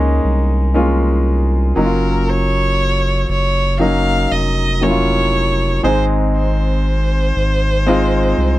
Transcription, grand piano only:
0.00 0.70 G#3 medium
0.00 0.70 A#3 medium
0.00 0.70 C#4 medium
0.00 0.70 D#4 medium
0.74 1.71 G#3 medium
0.74 1.72 A#3 medium
0.74 1.72 C#4 medium
0.74 1.72 F4 medium
1.76 3.70 F#3 medium
1.76 3.70 A#3 medium
1.76 3.70 C#4 medium
1.76 1.83 D#4 medium
1.84 3.73 F4 medium
3.79 4.76 F#3 medium
3.79 4.77 A#3 medium
3.79 4.77 C#4 medium
3.79 4.77 D#4 medium
4.81 5.78 F#3 medium
4.81 5.78 A#3 medium
4.81 5.79 C#4 medium
4.81 4.89 E4 medium
4.89 5.82 F4 medium
5.83 7.32 G#2 medium
5.83 7.77 G#3 medium
5.83 7.77 C4 medium
5.83 7.77 D#4 medium
5.83 7.77 G#4 medium
7.86 8.59 G#3 medium
7.86 8.59 C4 medium
7.86 8.59 D#4 medium
7.86 8.59 F4 medium

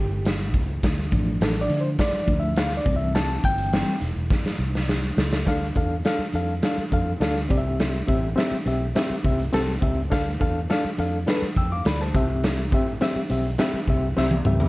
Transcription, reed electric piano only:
0.00 0.37 G4 medium
1.11 2.26 F3 medium
1.11 2.26 A3 medium
1.11 2.27 D4 medium
1.42 1.60 A4 medium
1.61 1.81 D5 medium
1.81 1.89 C5 medium
2.00 2.40 D5 medium
2.27 2.54 F3 soft
2.27 2.54 A3 soft
2.27 2.54 D4 medium
2.40 2.59 E5 medium
2.58 2.77 F5 medium
2.77 2.95 D5 medium
2.85 3.69 E3 medium
2.85 3.69 G3 soft
2.85 3.69 C4 medium
2.96 3.16 E5 medium
3.15 3.45 A5 loud
3.45 3.99 G5 loud
3.73 3.99 E3 soft
3.73 3.99 G3 soft
3.73 4.00 C4 medium
5.46 5.66 D4 loud
5.46 5.66 A4 medium
5.46 5.67 F5 loud
5.75 5.95 D4 medium
5.75 5.95 A4 medium
5.75 5.96 F5 medium
6.05 6.24 D4 loud
6.05 6.24 A4 medium
6.05 6.25 F5 loud
6.34 6.53 D4 medium
6.34 6.54 A4 medium
6.34 6.54 F5 medium
6.63 6.82 D4 medium
6.63 6.83 A4 medium
6.63 6.83 F5 medium
6.92 7.11 D4 medium
6.92 7.11 A4 medium
6.92 7.12 F5 medium
7.20 7.40 D4 medium
7.20 7.40 A4 medium
7.20 7.41 F5 loud
7.49 7.96 C4 medium
7.49 7.97 G4 medium
7.49 7.57 D5 medium
7.58 8.00 E5 medium
8.07 8.27 C4 medium
8.07 8.27 G4 medium
8.07 8.27 E5 loud
8.36 8.56 C4 loud
8.36 8.56 G4 medium
8.36 8.56 E5 loud
8.66 8.85 C4 medium
8.66 8.85 G4 medium
8.66 8.86 E5 medium
8.95 9.14 C4 medium
8.95 9.14 G4 medium
8.95 9.15 E5 medium
9.24 9.43 C4 medium
9.24 9.44 G4 medium
9.24 9.44 E5 medium
9.52 9.72 C4 loud
9.52 9.72 G4 medium
9.52 9.73 A4 loud
9.81 10.01 C4 medium
9.81 10.01 G4 medium
9.81 10.02 E5 medium
10.10 10.30 D4 loud
10.10 10.30 A4 loud
10.10 10.31 F5 loud
10.40 10.59 D4 medium
10.40 10.59 A4 medium
10.40 10.60 F5 loud
10.69 10.88 D4 loud
10.69 10.88 A4 loud
10.69 10.89 F5 loud
10.98 11.17 D4 medium
10.98 11.17 A4 medium
10.98 11.18 F5 medium
11.26 11.46 D4 medium
11.26 11.46 A4 medium
11.26 11.46 B4 loud
11.57 11.71 G5 medium
11.57 11.71 E6 medium
11.72 11.85 F5 medium
11.72 11.85 D6 medium
11.87 12.00 D5 medium
11.87 12.00 B5 medium
12.01 12.29 C5 soft
12.01 12.28 A5 medium
12.14 12.61 C4 medium
12.14 12.61 G4 medium
12.14 12.62 E5 medium
12.72 12.91 C4 medium
12.72 12.92 G4 medium
12.72 12.92 E5 medium
13.01 13.20 C4 loud
13.01 13.20 G4 medium
13.01 13.20 E5 loud
13.30 13.49 C4 medium
13.30 13.49 G4 medium
13.30 13.50 E5 medium
13.58 13.78 C4 medium
13.58 13.78 G4 medium
13.58 13.79 E5 medium
13.88 14.07 C4 medium
13.88 14.07 G4 medium
13.88 14.08 E5 medium
14.16 14.36 C4 loud
14.16 14.36 G4 medium
14.16 14.36 E5 loud
14.45 14.64 C4 medium
14.45 14.65 G4 medium
14.45 14.65 E5 medium

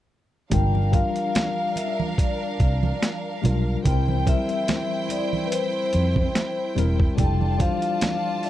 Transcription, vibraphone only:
0.53 0.96 G5 medium
0.94 1.73 F5 medium
1.77 1.96 E5 medium
2.19 3.40 D5 medium
3.86 4.25 G5 medium
4.28 5.13 E5 medium
5.11 5.47 D5 medium
5.46 5.52 B4 medium
5.52 6.73 C5 medium
7.19 7.58 G5 medium
7.61 8.46 F5 medium
8.44 8.50 E5 medium

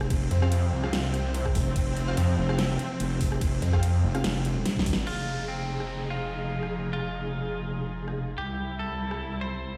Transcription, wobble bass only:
0.00 0.29 F1 loud
1.55 1.74 F1 loud
1.76 2.16 F1 loud
2.38 2.78 F1 loud
3.00 3.61 F1 loud
4.03 4.23 F1 loud
4.24 4.64 F1 loud
4.86 5.05 G#1 loud
5.07 8.36 F1 medium
8.38 9.77 C2 medium

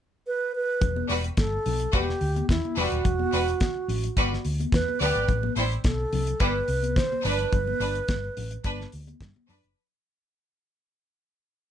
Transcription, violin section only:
1.09 1.22 G3 medium
1.09 1.22 F#4 medium
1.09 1.22 B4 medium
1.93 2.06 G3 medium
1.93 2.06 F#4 medium
1.93 2.06 B4 medium
2.77 3.01 G3 medium
2.77 3.01 F#4 medium
2.77 3.01 B4 medium
3.33 3.46 G3 medium
3.33 3.46 F#4 medium
3.33 3.46 B4 loud
4.17 4.30 G3 medium
4.17 4.30 F#4 medium
4.17 4.30 B4 medium
5.01 5.25 B3 medium
5.01 5.25 G4 medium
5.01 5.25 D5 medium
5.57 5.69 G3 medium
5.57 5.70 E4 medium
5.57 5.69 C5 medium
6.40 6.53 G3 medium
6.40 6.53 E4 medium
6.40 6.53 B4 medium
7.25 7.49 D4 medium
7.25 7.49 B4 medium
7.81 7.93 D4 medium
7.81 7.93 B4 medium
8.65 8.77 D4 medium
8.65 8.77 B4 loud
9.49 9.73 D4 medium
9.49 9.73 B4 medium

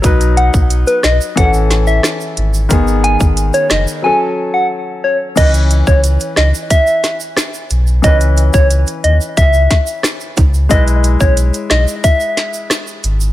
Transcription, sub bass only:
0.04 0.50 B1 loud
0.54 0.84 B1 loud
1.04 1.19 B1 loud
1.37 2.00 A1 loud
2.37 2.68 G#1 loud
2.71 3.17 G#1 loud
3.21 3.51 G#1 medium
3.71 3.86 F#1 loud
5.37 5.83 C#2 loud
5.87 6.18 C#2 medium
6.37 6.53 C#2 loud
7.71 8.01 B1 medium
8.04 8.50 C#2 loud
8.54 8.84 C#2 loud
9.04 9.19 D#2 medium
9.37 9.68 C#2 loud
10.38 10.68 C#2 medium
10.71 11.17 B1 loud
11.21 11.51 B1 loud
11.71 11.86 B1 loud
13.04 13.33 G#1 loud

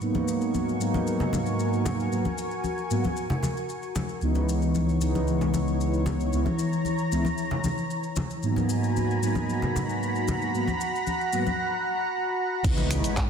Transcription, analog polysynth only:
0.00 0.77 G#2 medium
0.00 0.77 F#3 medium
0.00 0.77 A#3 medium
0.00 0.77 B3 medium
0.00 0.77 D#4 medium
0.79 2.08 G#2 medium
0.79 2.08 F#3 medium
0.79 2.09 A#3 medium
0.79 2.09 B3 medium
0.79 2.09 D#4 medium
2.11 2.25 G#2 medium
2.11 2.25 F#3 medium
2.11 2.25 A#3 medium
2.11 2.25 B3 medium
2.11 2.26 F#4 medium
2.90 3.04 G#2 medium
2.90 3.04 F#3 medium
2.90 3.04 A#3 medium
2.90 3.04 B3 medium
2.90 3.05 F#4 loud
4.21 4.98 C#2 medium
4.21 4.98 E3 medium
4.21 4.98 G#3 medium
4.21 4.98 B3 medium
4.21 4.98 D#4 medium
5.00 6.29 C#2 medium
5.00 6.29 E3 medium
5.00 6.30 G#3 medium
5.00 6.30 B3 medium
5.00 6.30 D#4 medium
6.32 6.46 C#2 medium
6.32 6.46 E3 medium
6.32 6.47 G#3 medium
6.32 6.47 B3 medium
6.32 6.47 E4 medium
7.11 7.25 C#2 medium
7.11 7.25 E3 medium
7.11 7.25 G#3 medium
7.11 7.26 B3 medium
7.11 7.26 E4 loud
8.42 9.19 G#2 medium
8.42 9.19 F#3 medium
8.42 9.19 A#3 medium
8.42 9.19 B3 medium
8.42 9.20 D#4 medium
9.21 10.50 G#2 medium
9.21 10.50 F#3 medium
9.21 10.51 A#3 medium
9.21 10.51 B3 medium
9.21 10.51 D#4 medium
10.53 10.67 G#2 medium
10.53 10.67 F#3 medium
10.53 10.68 A#3 medium
10.53 10.68 B3 medium
10.53 10.68 F#4 medium
11.32 11.46 G#2 medium
11.32 11.46 F#3 medium
11.32 11.46 A#3 medium
11.32 11.47 B3 medium
11.32 11.47 F#4 loud
12.63 13.30 E3 medium
12.63 13.30 G#3 medium
12.63 13.30 B3 medium
12.63 13.30 D#4 loud

